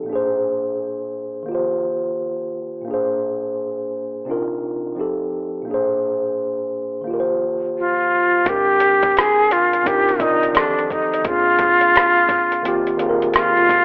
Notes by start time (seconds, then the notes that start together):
Already playing: F3 C4 A4
0.03 A#2 A#3
0.09 D4 G#4
0.15 C5
1.43 D#3 A#3
1.49 F4 G4
1.55 C5
2.82 A#2 A#3
2.88 D4 G#4
2.94 C5
4.25 C3 C4 D4 D#4
4.30 F4 A#4
4.95 F3 C4 D#4
4.99 G4 A4
5.62 A#2 A#3
5.68 D4 G#4
5.74 C5
7.01 D#3 A#3
7.07 F4 G4
7.13 A#4
7.20 C5
7.78 F4
8.43 A#2 G#3 C4, kick, closed hi-hat
8.48 D4 G4 A#4
8.80 closed hi-hat
9.02 kick, closed hi-hat
9.17 G#4, cross-stick, closed hi-hat
9.51 F4, closed hi-hat
9.73 closed hi-hat
9.82 C3 C4 D4 D#4, kick
9.87 F4 G4 A#4, closed hi-hat
10.09 closed hi-hat
10.18 C3 C4 D#4 D5, kick, closed hi-hat
10.22 D#4 F4 A#4
10.43 closed hi-hat
10.52 D#3 F3 C4, closed hi-hat
10.57 D4 G4 A4, cross-stick
10.79 closed hi-hat
10.90 D#4, kick, closed hi-hat
11.13 closed hi-hat
11.22 A#2 A#3 C4, kick, closed hi-hat
11.27 D4 F4 G#4
11.59 kick, closed hi-hat
11.81 closed hi-hat
11.96 cross-stick, closed hi-hat
12.29 kick, closed hi-hat
12.52 closed hi-hat
12.62 D#3 A#3 C4, closed hi-hat
12.67 F4 G4
12.87 closed hi-hat
12.97 D#3 A#3 C4, closed hi-hat
13.02 F4 G#4
13.10 A#4
13.22 closed hi-hat
13.34 F4, cross-stick, closed hi-hat
13.57 closed hi-hat
13.69 kick, closed hi-hat